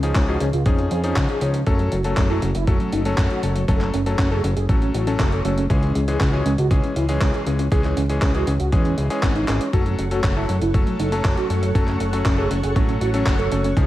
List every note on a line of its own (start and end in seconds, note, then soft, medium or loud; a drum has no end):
0.00 0.13 C#2 medium
0.00 0.25 F3 medium
0.00 0.25 C#4 medium
0.00 0.25 D#4 medium
0.00 0.11 G#4 medium
0.00 0.25 G#4 medium
0.00 closed hi-hat medium
0.15 0.38 C#2 medium
0.15 0.24 C#4 medium
0.15 kick loud
0.15 clap loud
0.15 closed hi-hat medium
0.28 0.46 F3 medium
0.28 0.46 C#4 medium
0.28 0.46 D#4 medium
0.28 0.37 F#4 medium
0.28 0.46 G#4 medium
0.40 0.52 C#2 loud
0.40 0.49 C#4 medium
0.40 closed hi-hat medium
0.53 0.65 C#2 medium
0.53 0.62 F4 medium
0.53 closed hi-hat soft
0.66 0.88 F2 medium
0.66 1.01 F3 medium
0.66 0.75 C#4 medium
0.66 1.01 C#4 medium
0.66 1.01 D#4 medium
0.66 1.01 G#4 medium
0.66 kick loud
0.66 closed hi-hat medium
0.78 0.87 C#4 medium
0.78 closed hi-hat soft
0.91 1.14 F2 medium
0.91 1.00 G#4 medium
0.91 closed hi-hat medium
1.04 1.39 F3 medium
1.04 1.39 C#4 medium
1.04 1.12 C#4 medium
1.04 1.39 D#4 medium
1.04 1.39 G#4 loud
1.04 closed hi-hat medium
1.16 1.28 C#2 medium
1.16 1.25 C#4 medium
1.16 kick loud
1.16 clap loud
1.16 closed hi-hat medium
1.29 1.38 G#4 loud
1.29 closed hi-hat soft
1.41 1.64 C#2 medium
1.41 1.59 F3 medium
1.41 1.59 C#4 medium
1.41 1.50 C#4 medium
1.41 1.59 D#4 medium
1.41 1.59 G#4 medium
1.41 closed hi-hat medium
1.54 1.63 C#4 medium
1.54 closed hi-hat medium
1.67 1.89 F#1 loud
1.67 1.95 F#3 medium
1.67 1.95 A3 medium
1.67 1.95 C#4 medium
1.67 1.75 F#4 loud
1.67 1.95 A4 loud
1.67 kick loud
1.67 closed hi-hat medium
1.79 1.88 F#3 medium
1.79 closed hi-hat soft
1.92 2.15 F#1 medium
1.92 2.00 F#3 medium
1.92 closed hi-hat medium
2.04 2.27 F#3 medium
2.04 2.27 A3 medium
2.04 2.27 C#4 medium
2.04 2.13 F#4 medium
2.04 2.27 A4 medium
2.04 closed hi-hat soft
2.17 2.40 F#1 medium
2.17 2.26 F#3 medium
2.17 kick loud
2.17 clap loud
2.17 closed hi-hat medium
2.30 2.47 F#3 medium
2.30 2.47 A3 medium
2.30 2.47 C#4 medium
2.30 2.38 E4 medium
2.30 2.47 A4 loud
2.42 2.54 F#1 medium
2.42 2.51 F#3 medium
2.42 closed hi-hat medium
2.55 2.66 F#1 medium
2.55 2.64 E4 medium
2.55 closed hi-hat soft
2.67 2.79 F#1 medium
2.67 3.02 F#3 medium
2.67 2.76 F#3 medium
2.67 3.02 A3 medium
2.67 3.02 C#4 medium
2.67 3.02 A4 medium
2.67 kick loud
2.67 closed hi-hat medium
2.80 2.89 F#3 medium
2.80 closed hi-hat soft
2.92 3.15 F#1 medium
2.92 3.01 D#4 medium
2.92 closed hi-hat medium
3.05 3.14 F#3 medium
3.05 3.40 F#3 medium
3.05 3.40 A3 medium
3.05 3.40 C#4 medium
3.05 3.40 A4 loud
3.05 closed hi-hat soft
3.18 3.29 F#1 medium
3.18 3.27 F#3 medium
3.18 kick loud
3.18 clap loud
3.18 closed hi-hat medium
3.30 3.39 F#4 loud
3.30 closed hi-hat soft
3.43 3.66 F#1 medium
3.43 3.61 F#3 medium
3.43 3.52 F#3 medium
3.43 3.61 A3 medium
3.43 3.61 C#4 medium
3.43 3.61 A4 medium
3.43 closed hi-hat medium
3.56 3.64 F#3 medium
3.56 closed hi-hat soft
3.68 3.91 F#1 loud
3.68 3.96 F#3 medium
3.68 3.96 A3 medium
3.68 3.96 C#4 medium
3.68 3.96 A4 loud
3.68 3.77 A4 loud
3.68 kick loud
3.68 closed hi-hat medium
3.81 3.90 C#4 medium
3.81 clap soft
3.81 closed hi-hat soft
3.94 4.16 F#1 medium
3.94 4.02 C#4 medium
3.94 closed hi-hat medium
4.06 4.28 F#3 medium
4.06 4.28 A3 medium
4.06 4.28 C#4 medium
4.06 4.28 A4 medium
4.06 4.15 A4 medium
4.06 closed hi-hat soft
4.19 4.41 F#1 medium
4.19 4.27 C#4 medium
4.19 kick medium
4.19 clap loud
4.19 closed hi-hat medium
4.31 4.49 F#3 medium
4.31 4.49 A3 medium
4.31 4.49 C#4 medium
4.31 4.40 G#4 medium
4.31 4.49 A4 loud
4.44 4.55 F#1 loud
4.44 4.53 C#4 medium
4.44 closed hi-hat medium
4.56 4.68 F#1 medium
4.56 4.65 G#4 medium
4.56 closed hi-hat soft
4.69 4.92 A1 medium
4.69 5.04 F#3 medium
4.69 5.04 A3 medium
4.69 5.04 C#4 medium
4.69 4.78 C#4 medium
4.69 5.04 A4 medium
4.69 kick loud
4.69 closed hi-hat medium
4.82 4.90 C#4 medium
4.82 closed hi-hat soft
4.94 5.17 A1 medium
4.94 5.03 F#4 medium
4.94 closed hi-hat medium
5.07 5.42 F#3 medium
5.07 5.42 A3 medium
5.07 5.16 C#4 medium
5.07 5.42 C#4 medium
5.07 5.42 A4 loud
5.07 closed hi-hat medium
5.19 5.42 F#1 medium
5.19 5.28 C#4 medium
5.19 kick loud
5.19 clap loud
5.19 closed hi-hat medium
5.32 5.41 A4 loud
5.32 closed hi-hat soft
5.44 5.67 F#1 medium
5.44 5.62 F#3 medium
5.44 5.62 A3 medium
5.44 5.53 C#4 medium
5.44 5.62 C#4 medium
5.44 5.62 A4 medium
5.44 closed hi-hat medium
5.57 5.66 C#4 medium
5.57 closed hi-hat soft
5.70 5.93 C#2 loud
5.70 5.98 E3 medium
5.70 5.98 G#3 medium
5.70 5.98 C#4 medium
5.70 5.79 G#4 medium
5.70 5.98 G#4 loud
5.70 kick loud
5.70 closed hi-hat medium
5.83 5.91 C#4 medium
5.83 closed hi-hat soft
5.95 6.18 C#2 medium
5.95 6.04 C#4 medium
5.95 closed hi-hat medium
6.08 6.30 E3 medium
6.08 6.30 G#3 medium
6.08 6.30 C#4 medium
6.08 6.30 G#4 medium
6.08 6.16 G#4 medium
6.08 closed hi-hat medium
6.20 6.43 C#2 medium
6.20 6.29 C#4 medium
6.20 kick loud
6.20 clap loud
6.20 closed hi-hat medium
6.33 6.51 E3 medium
6.33 6.51 G#3 medium
6.33 6.50 C#4 medium
6.33 6.42 F#4 medium
6.33 6.51 G#4 medium
6.46 6.57 C#2 medium
6.46 6.54 C#4 medium
6.46 closed hi-hat medium
6.58 6.70 C#2 medium
6.58 6.67 F#4 medium
6.58 closed hi-hat soft
6.71 6.82 C#2 medium
6.71 7.06 E3 medium
6.71 7.06 G#3 medium
6.71 6.79 C#4 medium
6.71 7.06 C#4 medium
6.71 7.06 G#4 medium
6.71 kick loud
6.71 closed hi-hat medium
6.84 6.92 C#4 medium
6.84 closed hi-hat soft
6.96 7.19 C#2 medium
6.96 7.05 E4 medium
6.96 closed hi-hat medium
7.09 7.43 E3 loud
7.09 7.43 G#3 medium
7.09 7.17 C#4 medium
7.09 7.44 C#4 medium
7.09 7.44 G#4 loud
7.09 closed hi-hat medium
7.21 7.33 C#2 medium
7.21 7.30 C#4 medium
7.21 kick medium
7.21 clap loud
7.21 closed hi-hat medium
7.34 7.42 G#4 medium
7.34 closed hi-hat soft
7.46 7.69 C#2 medium
7.46 7.64 E3 medium
7.46 7.64 G#3 medium
7.46 7.55 C#4 medium
7.46 7.64 C#4 medium
7.46 7.64 G#4 medium
7.46 closed hi-hat medium
7.59 7.68 C#4 medium
7.59 closed hi-hat medium
7.71 7.94 C#2 loud
7.71 8.00 E3 medium
7.71 8.00 G#3 medium
7.71 8.00 C#4 medium
7.71 7.80 G#4 loud
7.71 8.00 G#4 loud
7.71 kick loud
7.71 closed hi-hat medium
7.84 7.93 C#4 medium
7.84 clap soft
7.84 closed hi-hat soft
7.97 8.20 C#2 medium
7.97 8.05 C#4 medium
7.97 closed hi-hat medium
8.09 8.32 E3 medium
8.09 8.32 G#3 medium
8.09 8.32 C#4 medium
8.09 8.18 G#4 medium
8.09 8.32 G#4 loud
8.09 closed hi-hat medium
8.22 8.45 C#2 medium
8.22 8.31 C#4 medium
8.22 kick loud
8.22 clap loud
8.22 closed hi-hat medium
8.35 8.52 E3 medium
8.35 8.52 G#3 medium
8.35 8.52 C#4 medium
8.35 8.43 F#4 medium
8.35 8.52 G#4 loud
8.35 closed hi-hat soft
8.47 8.59 C#2 loud
8.47 8.56 C#4 medium
8.47 closed hi-hat medium
8.60 8.71 C#2 medium
8.60 8.68 F#4 medium
8.60 closed hi-hat medium
8.72 8.95 E2 medium
8.72 9.07 E3 medium
8.72 9.07 G#3 medium
8.72 8.81 C#4 medium
8.72 9.07 C#4 medium
8.72 9.07 G#4 medium
8.72 kick loud
8.72 closed hi-hat medium
8.85 8.94 C#4 medium
8.85 closed hi-hat soft
8.97 9.09 C#2 loud
8.97 9.06 E4 medium
8.97 closed hi-hat medium
9.10 9.45 E3 medium
9.10 9.45 G#3 medium
9.10 9.45 C#4 medium
9.10 9.19 C#4 medium
9.10 9.45 G#4 loud
9.10 closed hi-hat medium
9.23 9.46 G#1 loud
9.23 9.31 C#4 medium
9.23 kick medium
9.23 clap loud
9.23 closed hi-hat medium
9.35 9.44 D#4 loud
9.35 closed hi-hat soft
9.48 9.59 G#1 medium
9.48 9.66 E3 medium
9.48 9.66 G#3 medium
9.48 9.57 C#4 medium
9.48 9.66 C#4 medium
9.48 9.66 G#4 medium
9.48 clap medium
9.48 closed hi-hat medium
9.61 9.69 C#4 medium
9.61 closed hi-hat medium
9.73 9.96 F#1 loud
9.73 10.01 F#3 medium
9.73 10.01 A3 medium
9.73 10.01 C#4 medium
9.73 9.82 F#4 loud
9.73 10.01 A4 loud
9.73 13.73 A4 medium
9.73 13.73 C#5 medium
9.73 13.73 F#5 medium
9.73 13.87 C#6 medium
9.73 kick loud
9.73 closed hi-hat medium
9.86 9.95 F#3 medium
9.86 closed hi-hat soft
9.99 10.21 F#1 medium
9.99 10.07 F#3 medium
9.99 closed hi-hat medium
10.11 10.33 F#3 medium
10.11 10.33 A3 medium
10.11 10.34 C#4 medium
10.11 10.20 F#4 medium
10.11 10.33 A4 medium
10.11 closed hi-hat medium
10.24 10.46 F#1 medium
10.24 10.33 F#3 medium
10.24 kick loud
10.24 clap loud
10.24 closed hi-hat medium
10.36 10.54 F#3 medium
10.36 10.54 A3 medium
10.36 10.54 C#4 medium
10.36 10.45 E4 medium
10.36 10.54 A4 loud
10.49 10.60 F#1 medium
10.49 10.58 F#3 medium
10.49 closed hi-hat medium
10.62 10.73 F#1 medium
10.62 10.70 E4 medium
10.62 closed hi-hat soft
10.74 10.86 F#1 medium
10.74 11.09 F#3 medium
10.74 10.83 F#3 medium
10.74 11.09 A3 medium
10.74 11.09 C#4 medium
10.74 11.09 A4 medium
10.74 kick loud
10.74 closed hi-hat medium
10.87 10.95 F#3 medium
10.87 closed hi-hat soft
10.99 11.22 F#1 medium
10.99 11.08 D#4 medium
10.99 closed hi-hat medium
11.12 11.47 F#3 medium
11.12 11.21 F#3 medium
11.12 11.47 A3 medium
11.12 11.47 C#4 medium
11.12 11.47 A4 loud
11.12 closed hi-hat medium
11.25 11.36 F#1 medium
11.25 11.33 F#3 medium
11.25 kick loud
11.25 clap loud
11.25 closed hi-hat medium
11.37 11.46 F#4 loud
11.37 closed hi-hat soft
11.50 11.72 F#1 medium
11.50 11.67 F#3 medium
11.50 11.59 F#3 medium
11.50 11.67 A3 medium
11.50 11.67 C#4 medium
11.50 11.67 A4 medium
11.50 closed hi-hat medium
11.63 11.71 F#3 medium
11.63 closed hi-hat medium
11.75 11.98 F#1 loud
11.75 12.03 F#3 medium
11.75 12.03 A3 medium
11.75 12.03 C#4 medium
11.75 11.84 A4 loud
11.75 12.03 A4 loud
11.75 kick loud
11.75 closed hi-hat medium
11.88 11.96 C#4 medium
11.88 clap soft
11.88 closed hi-hat soft
12.00 12.23 F#1 medium
12.00 12.09 C#4 medium
12.00 closed hi-hat medium
12.13 12.35 F#3 medium
12.13 12.35 A3 medium
12.13 12.35 C#4 medium
12.13 12.21 A4 medium
12.13 12.35 A4 loud
12.13 closed hi-hat medium
12.25 12.48 F#1 medium
12.25 12.34 C#4 medium
12.25 kick loud
12.25 clap loud
12.25 closed hi-hat medium
12.38 12.56 F#3 medium
12.38 12.56 A3 medium
12.38 12.56 C#4 medium
12.38 12.47 G#4 medium
12.38 12.55 A4 loud
12.51 12.62 F#1 loud
12.51 12.59 C#4 medium
12.51 closed hi-hat medium
12.63 12.75 F#1 medium
12.63 12.72 G#4 medium
12.63 closed hi-hat medium
12.76 12.99 A1 medium
12.76 13.11 F#3 medium
12.76 13.11 A3 medium
12.76 12.84 C#4 medium
12.76 13.11 C#4 medium
12.76 13.11 A4 medium
12.76 kick loud
12.76 closed hi-hat medium
12.89 12.97 C#4 medium
12.89 closed hi-hat soft
13.01 13.24 A1 medium
13.01 13.10 F#4 medium
13.01 closed hi-hat medium
13.14 13.49 F#3 loud
13.14 13.49 A3 medium
13.14 13.49 C#4 medium
13.14 13.22 C#4 medium
13.14 13.49 A4 loud
13.14 closed hi-hat medium
13.26 13.49 F#1 medium
13.26 13.35 C#4 medium
13.26 kick loud
13.26 clap loud
13.26 closed hi-hat medium
13.39 13.47 A4 medium
13.39 closed hi-hat soft
13.52 13.74 F#1 medium
13.52 13.69 F#3 medium
13.52 13.69 A3 medium
13.52 13.69 C#4 medium
13.52 13.60 C#4 medium
13.52 13.69 A4 medium
13.52 closed hi-hat medium
13.64 13.73 C#4 medium
13.64 closed hi-hat medium
13.77 13.87 C#2 loud
13.77 13.87 F3 medium
13.77 13.87 C#4 medium
13.77 13.87 D#4 medium
13.77 13.87 G#4 medium
13.77 13.87 G#4 loud
13.77 13.86 G#4 loud
13.77 13.87 D#5 medium
13.77 13.87 F5 medium
13.77 kick loud
13.77 closed hi-hat medium